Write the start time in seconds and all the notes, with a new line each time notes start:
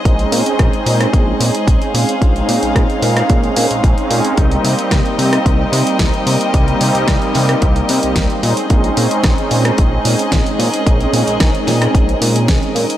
Already playing: G#4 C5 D#5
0.05 A#1 G#3 C4 C#4 D#4, kick, closed hi-hat
0.19 G#3 C4 C#4 D#4, closed hi-hat
0.32 A#2, open hi-hat
0.46 closed hi-hat
0.59 A#1, kick, cross-stick, closed hi-hat
0.72 G#3 C4 C#4 D#4, closed hi-hat
0.86 A#2, open hi-hat
1.01 cross-stick, closed hi-hat
1.13 A#1, kick, closed hi-hat
1.40 A#2, open hi-hat
1.55 closed hi-hat
1.68 A#1, kick, closed hi-hat
1.82 closed hi-hat
1.94 A#2 F5, open hi-hat
2.09 closed hi-hat
2.21 A#1 G#3 C4 C#4 D#4, kick, closed hi-hat
2.35 G#3 C4 C#4 D#4, closed hi-hat
2.48 A#2, open hi-hat
2.62 A#1, closed hi-hat
2.76 A#1, kick, cross-stick, closed hi-hat
2.88 G#3 C4 C#4 D#4, closed hi-hat
3.02 A#2, open hi-hat
3.17 cross-stick, closed hi-hat
3.30 A#1, kick, closed hi-hat
3.44 closed hi-hat
3.56 A#2, open hi-hat
3.71 A#1, closed hi-hat
3.84 A#1, kick, closed hi-hat
3.97 G#3 C4 C#4 D#4, closed hi-hat
4.10 A#2 G#3 C4 C#4 D#4, open hi-hat
4.25 closed hi-hat
4.37 C2 G3 A#3 C4 D#4 G4 A#4 D#5, kick, closed hi-hat
4.51 G3 A#3 C4 D#4, closed hi-hat
4.64 C3, open hi-hat
4.79 closed hi-hat
4.91 C2, kick, cross-stick, snare, closed hi-hat
5.04 G3 A#3 C4 D#4, closed hi-hat
5.18 C3, open hi-hat
5.33 cross-stick, closed hi-hat
5.46 C2, kick, closed hi-hat
5.72 C3, open hi-hat
5.87 closed hi-hat
5.99 C2, kick, snare, closed hi-hat
6.14 closed hi-hat
6.27 C3, open hi-hat
6.41 closed hi-hat
6.53 C2 G3 A#3 C4 D#4, kick, closed hi-hat
6.67 G3 A#3 C4 D#4, closed hi-hat
6.81 C3, open hi-hat
6.95 C2, closed hi-hat
7.08 C2, kick, cross-stick, snare, closed hi-hat
7.21 G3 A#3 C4 D#4, closed hi-hat
7.34 C3, snare, open hi-hat
7.49 cross-stick, closed hi-hat
7.62 C2, kick, closed hi-hat
7.76 closed hi-hat
7.89 C3, open hi-hat
8.03 C2, closed hi-hat
8.16 C2, kick, snare, closed hi-hat
8.30 closed hi-hat
8.43 A#2 G#3 C4 C#4 D#4 G#4 C5 D#5, open hi-hat
8.57 closed hi-hat
8.70 A#1 G#3 C4 C#4 D#4, kick, closed hi-hat
8.84 G#3 C4 C#4 D#4, closed hi-hat
8.97 A#2, open hi-hat
9.11 closed hi-hat
9.24 A#1, kick, cross-stick, snare, closed hi-hat
9.37 G#3 C4 C#4 D#4, closed hi-hat
9.51 A#2, open hi-hat
9.65 cross-stick, closed hi-hat
9.78 A#1, kick, closed hi-hat
10.05 A#2, open hi-hat
10.19 closed hi-hat
10.32 A#1, kick, snare, closed hi-hat
10.46 closed hi-hat
10.59 A#2 A#4, open hi-hat
10.74 closed hi-hat
10.86 A#1 G#3 C4 C#4 D#4, kick, closed hi-hat
11.00 G#3 C4 C#4 D#4, closed hi-hat
11.13 A#2, open hi-hat
11.27 A#1, closed hi-hat
11.40 A#1, kick, cross-stick, snare, closed hi-hat
11.53 G#3 C4 C#4 D#4, closed hi-hat
11.67 A#2, snare, open hi-hat
11.82 cross-stick, closed hi-hat
11.95 A#1, kick, closed hi-hat
12.09 closed hi-hat
12.21 A#2, open hi-hat
12.36 closed hi-hat
12.48 A#1, kick, snare, closed hi-hat
12.63 closed hi-hat
12.75 A#2 G#3 C4 C#4 D#4, open hi-hat
12.90 closed hi-hat